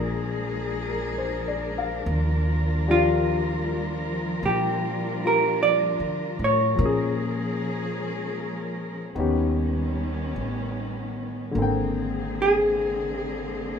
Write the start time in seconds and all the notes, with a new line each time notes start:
Already playing: A#1 F3 G#3 A#3 D4 G#4 A#4
0.89 A#4
1.18 C5
1.48 D5
1.78 F5
2.06 D#2 F3 G3 F4
2.88 F3 D4 F4 G4
4.42 A#2 D4 G4
5.25 F4 G4 A#4
5.63 D5
6.00 D3
6.39 A2
6.44 C#5
6.75 F3 A#3
6.79 A#2 F3 G#3 C#4 G#4
6.85 G#4
9.15 D#2 D#3 G3 B3 C#4
9.20 G4
10.36 A1
11.51 G#1 D3 A#3
11.57 D3 G#3 A#3 C4 G#4
11.62 G5
12.42 G#4
13.17 G4